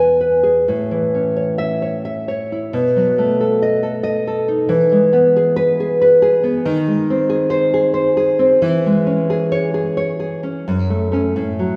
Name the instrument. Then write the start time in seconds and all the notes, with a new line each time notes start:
nylon-string guitar
Already playing: E2 B4 G#5
0.21 B4
0.43 G#4
0.68 A2
0.91 E3
1.15 C#4
1.37 C#5
1.58 E5
1.82 C#5
2.05 E5
2.28 C#5
2.52 E4
2.73 B2
2.96 F#3
3.18 A3
3.40 A4
3.62 D#5
3.83 A4
4.03 D#5
4.27 A4
4.48 D#4
4.69 E3
4.92 G#3
5.13 B3
5.36 G#4
5.56 B4
5.80 G#4
6.01 B4
6.22 G#4
6.44 B3
6.65 D#3
6.88 G#3
7.10 C4
7.30 G#4
7.50 C5
7.74 G#4
7.94 C5
8.17 G#4
8.39 C4
8.62 E3
8.86 G#3
9.06 C#4
9.30 G#4
9.52 C#5
9.74 G#4
9.97 C#5
10.20 G#4
10.43 C#4
10.68 F#2
10.90 A3
11.12 A3 C#4
11.36 A2
11.59 F#3